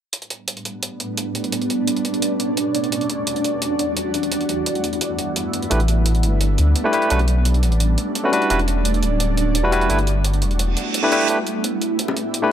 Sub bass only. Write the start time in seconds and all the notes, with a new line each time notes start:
5.71 A1
6.24 G1
6.59 D2
7.11 B1
7.63 A1
8.50 E1
9.03 D1
9.55 E1
9.90 G1
10.42 E1